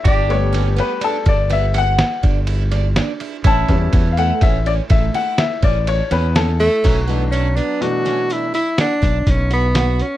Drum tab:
CC |--------------|--------------|x-------------|
RD |xxxxxxxxxxxxxx|xxxxxxxxxxxxxx|--------------|
HH |--------------|--------------|xxxxxxxxxxxxxx|
SD |--o---ooo--oo-|-o--o--oo--oo-|-----o--ooo-o-|
BD |o----o---o----|ooo-o-o--o----|o--------oo---|